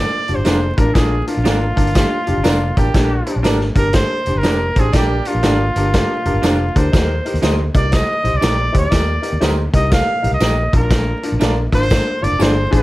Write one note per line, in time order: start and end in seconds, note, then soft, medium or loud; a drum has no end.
0.00 0.14 D4 medium
0.00 0.14 F4 medium
0.00 0.14 A#4 medium
0.00 0.36 D5 loud
0.28 0.36 F1 medium
0.28 0.38 D4 medium
0.28 0.38 F4 medium
0.28 0.38 G4 medium
0.28 closed hi-hat medium
0.35 0.44 G1 medium
0.35 0.79 C5 medium
0.45 0.71 F1 medium
0.45 0.57 D4 medium
0.45 0.63 D4 medium
0.45 0.63 F4 medium
0.45 0.58 F4 medium
0.45 0.63 G#4 medium
0.45 0.58 A#4 medium
0.45 0.58 D5 medium
0.45 snare loud
0.45 closed hi-hat medium
0.45 tambourine loud
0.77 0.91 A1 medium
0.77 0.88 D4 medium
0.77 0.88 F4 medium
0.77 0.95 A#4 medium
0.77 0.88 A#4 loud
0.77 kick loud
0.77 closed hi-hat medium
0.94 1.21 A#1 loud
0.94 1.13 D4 medium
0.94 1.14 F4 medium
0.94 1.27 G#4 medium
0.94 1.14 A#4 medium
0.94 kick loud
0.94 snare medium
0.94 closed hi-hat medium
0.94 tambourine medium
1.27 1.37 D4 medium
1.27 2.73 F4 medium
1.27 1.37 F4 medium
1.27 1.38 A#4 medium
1.27 closed hi-hat medium
1.37 1.44 A#1 medium
1.44 1.71 G#1 medium
1.44 1.57 D4 medium
1.44 1.63 D4 medium
1.44 1.63 F4 medium
1.44 1.57 F4 medium
1.44 1.63 A#4 medium
1.44 1.58 A#4 medium
1.44 1.58 D5 medium
1.44 snare loud
1.44 closed hi-hat medium
1.44 tambourine medium
1.76 2.03 G1 medium
1.76 1.86 D4 medium
1.76 1.87 F4 medium
1.76 1.87 A#4 medium
1.76 kick medium
1.76 closed hi-hat medium
1.87 closed hi-hat soft
1.94 2.13 D4 medium
1.94 2.13 F4 medium
1.94 2.13 G4 medium
1.94 kick loud
1.94 snare loud
1.94 closed hi-hat loud
1.94 tambourine medium
2.27 2.35 F1 medium
2.27 2.37 D4 medium
2.27 2.37 F4 medium
2.27 2.37 G4 medium
2.27 closed hi-hat medium
2.37 2.44 G1 medium
2.43 2.71 F1 loud
2.43 2.62 D4 medium
2.43 2.57 D4 medium
2.43 2.62 F4 medium
2.43 2.57 F4 medium
2.43 2.62 A#4 medium
2.43 2.57 A#4 medium
2.43 2.57 D5 medium
2.43 snare loud
2.43 closed hi-hat medium
2.43 tambourine medium
2.76 2.91 A1 medium
2.76 2.87 D4 medium
2.76 2.87 F4 medium
2.76 3.41 G4 medium
2.76 2.87 A#4 loud
2.76 kick medium
2.76 closed hi-hat medium
2.94 3.20 A#1 loud
2.94 3.12 D4 medium
2.94 3.13 G4 medium
2.94 3.13 A#4 loud
2.94 kick loud
2.94 snare loud
2.94 closed hi-hat medium
2.94 tambourine medium
3.26 3.36 D4 medium
3.26 3.37 G4 medium
3.26 3.37 C5 medium
3.26 closed hi-hat medium
3.36 3.43 A#1 medium
3.43 3.70 G#1 medium
3.43 3.61 D4 medium
3.43 3.56 D4 loud
3.43 3.62 G4 medium
3.43 3.57 G4 medium
3.43 3.62 A#4 loud
3.43 3.57 A#4 medium
3.43 3.57 D5 medium
3.43 snare loud
3.43 closed hi-hat medium
3.43 tambourine medium
3.61 snare soft
3.75 4.03 G1 medium
3.75 3.86 D4 medium
3.75 3.86 G4 medium
3.75 3.86 A#4 loud
3.75 3.94 A#4 loud
3.75 kick medium
3.75 closed hi-hat medium
3.93 4.12 D4 medium
3.93 4.12 G4 medium
3.93 4.13 A#4 medium
3.93 4.39 C5 loud
3.93 kick medium
3.93 snare loud
3.93 closed hi-hat loud
3.93 tambourine medium
4.26 4.34 F1 medium
4.26 4.36 D4 medium
4.26 4.36 G4 medium
4.26 4.37 C5 medium
4.26 closed hi-hat medium
4.35 4.44 G1 medium
4.35 4.81 A#4 medium
4.43 4.70 F1 medium
4.43 4.56 D4 medium
4.43 4.62 D4 medium
4.43 4.56 G4 medium
4.43 4.62 G4 medium
4.43 4.56 A#4 medium
4.43 4.62 C5 medium
4.43 4.57 D5 medium
4.43 snare loud
4.43 closed hi-hat medium
4.43 tambourine medium
4.76 4.90 A1 medium
4.76 4.87 D4 medium
4.76 4.87 G4 medium
4.76 4.95 G#4 loud
4.76 4.87 C5 loud
4.76 kick medium
4.76 closed hi-hat medium
4.93 5.19 A#1 medium
4.93 5.33 A#3 medium
4.93 5.12 D4 medium
4.93 5.33 G4 medium
4.93 5.12 G4 medium
4.93 5.29 G4 medium
4.93 5.12 A#4 medium
4.93 5.33 D5 medium
4.93 kick loud
4.93 snare loud
4.93 closed hi-hat medium
4.93 tambourine medium
5.25 5.36 D4 medium
5.25 6.78 F4 medium
5.25 5.37 G4 medium
5.25 5.37 A#4 medium
5.25 closed hi-hat medium
5.35 5.42 A#1 medium
5.43 5.69 G#1 medium
5.43 5.56 D4 medium
5.43 5.61 D4 medium
5.43 5.56 G4 medium
5.43 5.61 G4 medium
5.43 5.56 A#4 medium
5.43 5.62 A#4 medium
5.43 5.56 D5 medium
5.43 snare loud
5.43 closed hi-hat medium
5.43 tambourine medium
5.76 6.02 G1 medium
5.76 5.86 D4 medium
5.76 5.86 G4 medium
5.76 5.87 A#4 medium
5.76 closed hi-hat medium
5.93 6.11 D4 medium
5.93 6.11 G4 medium
5.93 6.12 A#4 medium
5.93 kick medium
5.93 snare loud
5.93 closed hi-hat loud
5.93 tambourine medium
6.25 6.33 F1 medium
6.25 6.35 D4 medium
6.25 6.35 G4 medium
6.25 6.36 A#4 medium
6.25 closed hi-hat medium
6.34 6.41 G1 medium
6.42 6.68 F1 loud
6.42 6.55 D4 medium
6.42 6.61 D4 medium
6.42 6.55 G4 medium
6.42 6.61 G4 medium
6.42 6.56 A#4 medium
6.42 6.62 C5 medium
6.42 6.56 D5 medium
6.42 snare loud
6.42 closed hi-hat medium
6.42 tambourine loud
6.76 6.90 D2 medium
6.76 6.85 D4 medium
6.76 6.85 G4 medium
6.76 6.86 A#4 medium
6.76 7.44 C5 medium
6.76 kick medium
6.76 closed hi-hat medium
6.92 7.19 D#2 medium
6.92 7.11 D#4 medium
6.92 7.11 G4 medium
6.92 7.11 A#4 medium
6.92 kick loud
6.92 snare loud
6.92 closed hi-hat medium
6.92 tambourine medium
7.25 7.35 D#4 medium
7.25 7.35 G4 medium
7.25 7.36 A#4 medium
7.25 closed hi-hat medium
7.34 7.41 D#2 medium
7.34 closed hi-hat soft
7.42 7.68 D2 medium
7.42 7.55 D#4 medium
7.42 7.61 D#4 medium
7.42 7.55 G4 loud
7.42 7.61 G4 medium
7.42 7.55 A#4 medium
7.42 7.61 C5 medium
7.42 7.56 D#5 loud
7.42 snare loud
7.42 closed hi-hat medium
7.42 tambourine medium
7.74 8.01 C2 medium
7.74 7.85 D#4 medium
7.74 7.85 G4 medium
7.74 7.85 A#4 medium
7.74 7.95 D5 loud
7.74 kick medium
7.74 closed hi-hat medium
7.91 8.10 D#4 medium
7.91 8.10 G4 medium
7.91 8.10 C5 medium
7.91 8.38 D#5 loud
7.91 kick medium
7.91 snare loud
7.91 closed hi-hat loud
7.91 tambourine medium
8.23 8.31 A#1 medium
8.23 8.34 D#4 medium
8.23 8.34 G4 medium
8.23 8.34 C5 medium
8.23 closed hi-hat medium
8.33 8.41 C2 medium
8.33 8.76 D5 loud
8.41 8.68 A#1 medium
8.41 8.60 D#4 medium
8.41 8.54 D#4 medium
8.41 8.60 G4 medium
8.41 8.55 G4 medium
8.41 8.55 A#4 medium
8.41 8.60 C5 medium
8.41 8.55 D#5 medium
8.41 snare loud
8.41 closed hi-hat medium
8.41 tambourine medium
8.72 8.89 D2 medium
8.72 8.83 D#4 medium
8.72 8.83 G4 medium
8.72 8.84 C5 medium
8.72 kick medium
8.72 closed hi-hat medium
8.79 9.40 D5 loud
8.90 9.17 D#2 loud
8.90 9.09 D#4 medium
8.90 9.10 G4 medium
8.90 9.10 A#4 medium
8.90 kick loud
8.90 snare loud
8.90 closed hi-hat loud
8.90 tambourine medium
9.22 9.33 D#4 medium
9.22 9.33 G4 medium
9.22 9.33 A#4 medium
9.22 closed hi-hat medium
9.33 9.40 D#2 medium
9.40 9.67 D2 medium
9.40 9.59 D#4 medium
9.40 9.54 D#4 medium
9.40 9.59 G4 medium
9.40 9.54 G4 medium
9.40 9.55 A#4 loud
9.40 9.59 C5 medium
9.40 9.55 D#5 medium
9.40 snare loud
9.40 closed hi-hat medium
9.40 tambourine medium
9.73 10.00 C2 medium
9.73 9.84 D#4 medium
9.73 9.84 G4 medium
9.73 9.84 A#4 medium
9.73 9.91 D#5 loud
9.73 kick medium
9.73 closed hi-hat medium
9.89 10.09 D#4 medium
9.89 10.08 G4 medium
9.89 10.09 A#4 medium
9.89 10.31 F5 loud
9.89 kick loud
9.89 snare loud
9.89 closed hi-hat loud
9.89 tambourine medium
10.22 10.31 A#1 medium
10.22 10.33 D#4 medium
10.22 10.33 G4 medium
10.22 10.33 A#4 medium
10.22 closed hi-hat medium
10.31 10.39 C2 medium
10.31 10.72 D#5 medium
10.40 10.66 A#1 loud
10.40 10.53 D#4 medium
10.40 10.59 D#4 medium
10.40 10.54 G4 loud
10.40 10.59 G4 medium
10.40 10.54 A#4 loud
10.40 10.60 A#4 medium
10.40 10.54 D#5 medium
10.40 snare loud
10.40 closed hi-hat medium
10.40 tambourine loud
10.73 11.13 A#1 medium
10.73 11.11 D4 medium
10.73 11.11 F4 medium
10.73 11.11 A#4 medium
10.73 11.38 A#4 medium
10.73 kick medium
10.73 closed hi-hat medium
10.90 kick medium
10.90 snare loud
10.90 closed hi-hat medium
10.90 tambourine medium
11.23 11.33 D4 medium
11.23 11.33 F4 medium
11.23 11.33 A#4 medium
11.23 closed hi-hat medium
11.32 11.39 A#1 loud
11.39 11.66 A#1 loud
11.39 11.52 D4 medium
11.39 11.58 D4 medium
11.39 11.58 F4 medium
11.39 11.53 F4 medium
11.39 11.59 A#4 loud
11.39 11.53 A#4 medium
11.39 11.53 D5 medium
11.39 snare loud
11.39 closed hi-hat medium
11.39 tambourine medium
11.72 11.99 G#1 medium
11.72 11.83 D4 medium
11.72 11.83 F4 medium
11.72 11.83 A#4 medium
11.72 12.25 C5 loud
11.72 kick medium
11.72 closed hi-hat medium
11.83 closed hi-hat soft
11.90 12.08 D4 medium
11.90 12.08 F4 medium
11.90 12.09 A#4 medium
11.90 kick loud
11.90 snare loud
11.90 closed hi-hat loud
11.90 tambourine medium
12.22 12.30 G1 loud
12.22 12.32 D4 medium
12.22 12.32 F4 medium
12.22 12.32 A#4 medium
12.22 12.43 D5 loud
12.22 closed hi-hat medium
12.31 12.38 F1 medium
12.39 12.65 G1 loud
12.39 12.57 D4 medium
12.39 12.52 D4 medium
12.39 12.57 F4 medium
12.39 12.52 F4 medium
12.39 12.57 G#4 medium
12.39 12.53 A#4 medium
12.39 12.74 C5 loud
12.39 12.53 D5 medium
12.39 snare loud
12.39 closed hi-hat medium
12.39 tambourine medium
12.70 12.83 A1 medium
12.70 12.81 D4 medium
12.70 12.81 F4 medium
12.70 12.82 G#4 loud
12.70 12.83 A#4 loud
12.70 kick medium
12.70 closed hi-hat medium